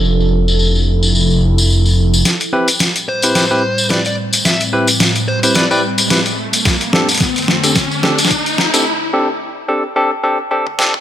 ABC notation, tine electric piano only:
X:1
M:4/4
L:1/16
Q:"Swing 16ths" 1/4=109
K:Am
V:1 name="Tine electric piano"
[CDGA]16 | z2 [CEGB] z4 [CEGB] [CEGB] [CEGB] z2 [CEGB] z3 | z2 [CEGB] z4 [CEGB] [CEGB] [CEGB] z2 [CEGB] z3 | z2 [CDGA] z4 [CDGA] z2 [CDGA] z4 [CDGA] |
z2 [CDGA] z3 [CDGA] z [CDGA] z [CDGA] z [CDGA] z [CDGA] z |]